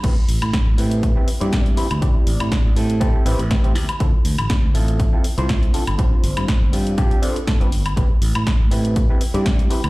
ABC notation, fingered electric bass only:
X:1
M:4/4
L:1/16
Q:"Swing 16ths" 1/4=121
K:Am
V:1 name="Fingered electric bass" clef=bass
A,,, z A,,, A,, z A,,, A,,3 z2 G,,3 z D,, | z2 A,,, A,, z A,,, A,,3 z A,,, A,,,3 D,, z | D,, z D,, A,,, z D,, A,,,3 z2 C,,3 z G,,, | z2 G,,, G,, z G,,, G,,3 z4 G,,,3 |
A,,, z A,,, A,, z A,,, A,,3 z2 G,,3 z D,, |]